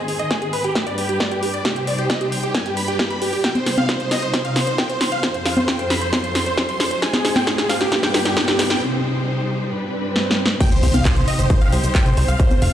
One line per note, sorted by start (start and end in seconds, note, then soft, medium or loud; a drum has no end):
0.00 0.75 G#2 medium
0.00 0.75 D#3 medium
0.00 0.75 C4 medium
0.00 0.75 G#4 medium
0.08 0.18 G#4 medium
0.08 open hi-hat loud
0.19 0.29 D#5 loud
0.19 0.29 D#5 medium
0.19 closed hi-hat medium
0.30 0.41 G#4 medium
0.30 kick loud
0.30 snare medium
0.30 closed hi-hat medium
0.42 0.52 G#4 medium
0.42 closed hi-hat medium
0.53 0.63 B4 loud
0.53 0.63 B4 medium
0.53 open hi-hat loud
0.64 0.74 G4 medium
0.64 closed hi-hat medium
0.75 1.64 G2 medium
0.75 1.64 G3 medium
0.75 1.64 D4 medium
0.75 0.85 G4 medium
0.75 1.64 B4 medium
0.75 kick loud
0.75 snare medium
0.75 closed hi-hat medium
0.87 0.97 D5 medium
0.87 closed hi-hat medium
0.98 1.08 G4 medium
0.98 open hi-hat loud
1.09 1.19 G4 medium
1.09 closed hi-hat medium
1.20 1.30 D5 medium
1.20 kick loud
1.20 snare medium
1.20 closed hi-hat soft
1.31 1.41 G4 medium
1.31 1.42 G4 medium
1.31 closed hi-hat soft
1.42 1.53 G4 medium
1.42 open hi-hat loud
1.54 1.64 D5 medium
1.54 closed hi-hat medium
1.65 2.54 C3 medium
1.65 5.20 G3 medium
1.65 2.54 D#4 medium
1.65 1.75 G4 medium
1.65 2.54 C5 medium
1.65 kick loud
1.65 snare medium
1.65 closed hi-hat medium
1.76 1.86 G4 medium
1.76 closed hi-hat soft
1.87 1.97 D5 medium
1.87 open hi-hat loud
1.99 2.09 G4 medium
1.99 closed hi-hat medium
2.10 2.20 D#5 medium
2.10 kick loud
2.10 snare medium
2.10 closed hi-hat medium
2.21 2.31 G4 medium
2.21 closed hi-hat medium
2.32 2.42 G5 medium
2.32 open hi-hat loud
2.43 2.53 G4 medium
2.43 closed hi-hat soft
2.54 3.43 G2 medium
2.54 3.43 D4 medium
2.54 3.43 B4 medium
2.54 2.65 G#5 medium
2.54 kick loud
2.54 snare medium
2.54 closed hi-hat medium
2.66 2.76 G4 medium
2.66 closed hi-hat soft
2.77 2.87 B5 loud
2.77 2.87 B5 medium
2.77 open hi-hat loud
2.88 2.98 G4 medium
2.88 closed hi-hat medium
2.99 3.09 G4 medium
2.99 kick loud
2.99 snare medium
2.99 closed hi-hat soft
3.10 3.21 B5 loud
3.10 3.21 B5 medium
3.10 closed hi-hat soft
3.22 3.32 G4 medium
3.22 open hi-hat loud
3.33 3.43 G4 medium
3.33 open hi-hat medium
3.44 5.21 C3 medium
3.44 5.21 D#4 medium
3.44 7.88 C5 medium
3.44 3.54 G5 loud
3.44 kick loud
3.44 snare medium
3.44 closed hi-hat medium
3.44 riser medium
3.55 3.65 C5 medium
3.55 closed hi-hat medium
3.55 high conga medium
3.66 3.77 C5 medium
3.66 snare medium
3.66 open hi-hat loud
3.78 3.88 F5 medium
3.78 closed hi-hat medium
3.78 high conga medium
3.89 3.99 C5 medium
3.89 kick loud
3.89 snare medium
3.89 closed hi-hat medium
4.00 4.10 C5 medium
4.00 closed hi-hat medium
4.11 4.21 D#5 loud
4.11 4.21 D#5 medium
4.11 snare medium
4.11 open hi-hat loud
4.22 4.32 C5 medium
4.22 closed hi-hat soft
4.34 4.44 C5 medium
4.34 kick loud
4.34 snare medium
4.34 closed hi-hat medium
4.45 4.55 F5 medium
4.45 closed hi-hat medium
4.56 4.66 C5 medium
4.56 snare medium
4.56 open hi-hat loud
4.67 4.77 C5 medium
4.67 closed hi-hat medium
4.78 4.88 G5 loud
4.78 4.88 G5 medium
4.78 kick loud
4.78 snare medium
4.78 closed hi-hat soft
4.89 5.00 C5 medium
4.89 closed hi-hat medium
5.01 5.11 C5 medium
5.01 snare medium
5.01 open hi-hat loud
5.12 5.22 F5 medium
5.12 closed hi-hat soft
5.23 7.00 F2 medium
5.23 7.00 F3 medium
5.23 7.00 A4 medium
5.23 5.33 C5 medium
5.23 kick loud
5.23 snare medium
5.23 closed hi-hat medium
5.34 5.44 C5 medium
5.34 closed hi-hat medium
5.45 5.56 F5 medium
5.45 snare medium
5.45 open hi-hat loud
5.57 5.67 C5 medium
5.57 closed hi-hat medium
5.57 high conga medium
5.68 5.78 G5 medium
5.68 kick loud
5.68 snare medium
5.68 closed hi-hat medium
5.79 5.89 C5 medium
5.79 closed hi-hat medium
5.90 6.00 B5 medium
5.90 snare medium
5.90 open hi-hat loud
6.01 6.12 C5 medium
6.01 closed hi-hat medium
6.13 6.23 C6 medium
6.13 kick loud
6.13 snare medium
6.13 closed hi-hat medium
6.13 high conga medium
6.24 6.34 C5 medium
6.24 closed hi-hat medium
6.35 6.45 C6 loud
6.35 6.45 C6 medium
6.35 snare medium
6.35 open hi-hat loud
6.46 6.56 C5 medium
6.46 closed hi-hat soft
6.57 6.68 C5 medium
6.57 kick loud
6.57 snare medium
6.57 closed hi-hat soft
6.69 6.79 C6 loud
6.69 6.79 C6 medium
6.69 closed hi-hat medium
6.80 6.90 C5 medium
6.80 snare medium
6.80 open hi-hat loud
6.91 7.01 C5 medium
6.91 closed hi-hat medium
7.02 7.91 G#2 medium
7.02 7.91 G#3 medium
7.02 7.91 D#4 medium
7.02 7.12 G#5 loud
7.02 kick loud
7.02 snare medium
7.02 closed hi-hat medium
7.13 7.24 G#4 medium
7.13 snare medium
7.13 closed hi-hat medium
7.13 high conga medium
7.25 7.35 G#4 medium
7.25 snare medium
7.25 open hi-hat loud
7.36 7.46 G5 medium
7.36 snare medium
7.36 closed hi-hat medium
7.36 high conga medium
7.47 7.57 G#4 medium
7.47 kick loud
7.47 snare medium
7.47 closed hi-hat medium
7.58 7.68 G#4 medium
7.58 snare medium
7.58 closed hi-hat medium
7.69 7.80 F5 loud
7.69 7.80 F5 medium
7.69 snare loud
7.69 open hi-hat loud
7.81 7.91 G4 medium
7.81 snare medium
7.81 closed hi-hat medium
7.92 8.81 G2 medium
7.92 8.80 G3 medium
7.92 8.81 D4 medium
7.92 8.02 G4 medium
7.92 8.81 B4 medium
7.92 kick loud
7.92 snare medium
7.92 closed hi-hat medium
8.03 8.13 G5 medium
8.03 8.13 G5 loud
8.03 snare medium
8.03 closed hi-hat medium
8.14 8.24 G4 medium
8.14 snare loud
8.14 open hi-hat loud
8.25 8.36 G4 medium
8.25 snare medium
8.25 closed hi-hat medium
8.37 8.47 G5 loud
8.37 8.47 G5 medium
8.37 kick loud
8.37 snare loud
8.37 closed hi-hat soft
8.48 8.58 G4 medium
8.48 snare medium
8.48 closed hi-hat medium
8.59 8.69 G4 medium
8.59 snare loud
8.59 open hi-hat loud
8.70 8.80 G5 loud
8.70 8.80 G5 medium
8.70 snare medium
8.70 closed hi-hat medium
8.81 9.70 C3 medium
8.81 10.59 G3 medium
8.81 9.70 D#4 medium
8.81 9.70 C5 medium
9.71 10.60 G2 medium
9.71 10.60 D4 medium
9.71 10.60 B4 medium
9.71 swell medium
10.16 snare medium
10.31 snare medium
10.46 snare medium
10.60 12.38 C3 medium
10.60 12.73 C4 medium
10.60 12.38 D#4 medium
10.60 12.38 G4 medium
10.60 10.71 G5 loud
10.60 kick loud
10.60 closed hi-hat medium
10.60 crash loud
10.60 impact medium
10.60 shaker medium
10.72 10.82 C5 medium
10.72 closed hi-hat medium
10.72 shaker soft
10.83 10.90 C2 medium
10.83 10.93 C5 medium
10.83 open hi-hat loud
10.94 11.01 C2 medium
10.94 11.04 F5 medium
10.94 11.04 F5 loud
10.94 closed hi-hat medium
10.94 high conga medium
10.94 shaker medium
11.05 11.15 C5 medium
11.05 kick loud
11.05 clap loud
11.05 closed hi-hat medium
11.05 shaker medium
11.16 11.24 C2 medium
11.16 11.27 C5 medium
11.16 closed hi-hat medium
11.16 shaker soft
11.28 11.38 D#5 loud
11.28 11.38 D#5 medium
11.28 open hi-hat loud
11.39 11.46 G1 medium
11.39 11.49 C5 medium
11.39 closed hi-hat medium
11.39 shaker medium
11.50 11.60 C5 medium
11.50 kick loud
11.50 closed hi-hat medium
11.50 shaker soft
11.61 11.71 F5 loud
11.61 closed hi-hat medium
11.61 shaker soft
11.72 11.80 C2 loud
11.72 11.82 C5 medium
11.72 11.83 C5 medium
11.72 open hi-hat loud
11.84 11.91 C2 medium
11.84 11.94 C5 medium
11.84 closed hi-hat medium
11.84 shaker medium
11.95 12.05 G5 medium
11.95 kick loud
11.95 clap loud
11.95 closed hi-hat soft
11.95 shaker soft
12.06 12.13 C2 medium
12.06 12.16 C5 medium
12.06 closed hi-hat medium
12.06 shaker soft
12.17 12.24 C2 loud
12.17 12.27 C5 medium
12.17 open hi-hat loud
12.28 12.36 C2 medium
12.28 12.38 F5 medium
12.28 closed hi-hat medium
12.28 shaker medium
12.39 12.73 A3 medium
12.39 12.73 F4 medium
12.39 12.50 C5 medium
12.39 kick loud
12.39 closed hi-hat medium
12.39 shaker soft
12.51 12.61 C5 medium
12.51 closed hi-hat medium
12.51 high conga medium
12.51 shaker soft
12.62 12.69 F1 loud
12.62 12.72 F5 medium
12.62 open hi-hat loud